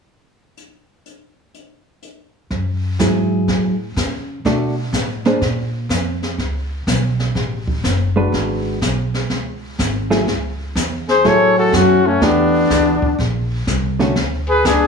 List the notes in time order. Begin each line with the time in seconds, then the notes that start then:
0.57 closed hi-hat
1.06 closed hi-hat
1.54 closed hi-hat
2.02 closed hi-hat
2.51 F#2, brush sweep, kick, snare
2.99 G#2 F#3 E4 G#4, kick, snare, hi-hat pedal
3.48 A2, brush sweep, kick, snare
3.96 C#3, kick, snare, hi-hat pedal
4.45 B2 A3 D4 F#4, brush sweep, kick, snare
4.93 A2, kick, snare, hi-hat pedal
5.25 A#3 D4 G#4 C5, snare
5.41 A#2, brush sweep, kick, snare
5.89 F2, kick, snare, hi-hat pedal
6.23 snare
6.38 C#2, brush sweep, kick, snare
6.87 B1, kick, snare, hi-hat pedal
7.20 snare
7.35 A1, brush sweep, kick, snare
7.68 kick
7.84 F#1, kick, snare, hi-hat pedal
8.16 G#3 D4 F#4 B4
8.32 G#1, brush sweep, kick, snare
8.81 B1, kick, snare, hi-hat pedal
9.14 snare
9.30 C#2, brush sweep, kick, snare
9.79 G#1, kick, snare, hi-hat pedal
10.10 F#3 A3 E4 G#4, snare
10.27 C#2, brush sweep, kick, snare
10.75 E2, kick, snare, hi-hat pedal
11.08 G#4 C5, snare
11.24 A2 F#3 A3 E4 G#4 A4 C#5, brush sweep, kick, snare
11.58 F#4 A4
11.73 F#2 C#4 F#4, kick, snare, hi-hat pedal
12.06 A3 C#4
12.21 E2 E3 A3 B3 D4 G4, brush sweep, kick, snare
12.70 D2, kick, snare, hi-hat pedal
13.02 muted upright bass stroke, kick
13.19 A#1, brush sweep, kick, snare
13.67 C2, kick, snare, hi-hat pedal
13.99 D3 A3 C#4 F#4, snare
14.15 D2, brush sweep, kick, snare
14.49 G#4 B4
14.65 C#2 D4 G#4, kick, snare, hi-hat pedal